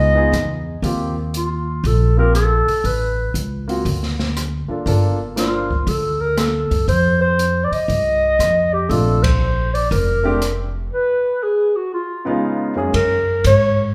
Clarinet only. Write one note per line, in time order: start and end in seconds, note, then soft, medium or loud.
0.00 0.67 D#5 loud
1.37 1.88 F4 medium
1.86 2.18 A4 medium
2.19 2.34 A#4 medium
2.35 2.87 A4 medium
2.86 3.36 B4 medium
5.38 5.90 F4 medium
5.88 6.22 A4 medium
6.21 6.40 A#4 medium
6.38 6.88 A4 medium
6.88 7.19 C5 medium
7.21 7.66 C5 loud
7.64 7.74 D5 medium
7.73 8.75 D#5 loud
8.73 8.91 G4 medium
8.90 9.24 A4 medium
9.23 9.75 C5 loud
9.74 9.91 D5 medium
9.92 10.69 A#4 medium
10.92 11.44 B4 loud
11.43 11.78 G#4 medium
11.76 11.93 F#4 medium
11.94 12.40 F4 medium
12.95 13.41 A#4 loud
13.46 13.92 C#5 loud